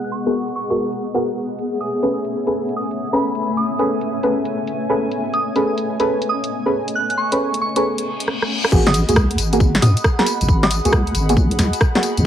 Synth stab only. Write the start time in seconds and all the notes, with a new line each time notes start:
0.26 B3 F#4 G#4 A#4
0.70 B3 F#4 G#4 A#4
1.14 B3 F#4 G#4 A#4
2.03 C#4 G#4 A4 B4
2.47 C#4 G#4 A4 B4
3.13 C#4 G#4 A4 B4
3.79 C#4 G#4 A4 B4
4.23 C#4 G#4 A4 B4
4.89 C#4 G#4 A4 B4
5.56 C#4 G#4 A4 B4
6.00 C#4 G#4 A4 B4
6.66 C#4 G#4 A4 B4
7.32 C#4 G#4 A4 B4
7.76 C#4 G#4 A4 B4
8.72 A#3 B3 F#4 G#4
9.09 A#3 B3 F#4 G#4
9.53 A#3 B3 F#4 G#4
10.19 A#3 B3 F#4 G#4
10.85 A#3 B3 F#4 G#4
11.29 A#3 B3 F#4 G#4
11.95 A#3 B3 F#4 G#4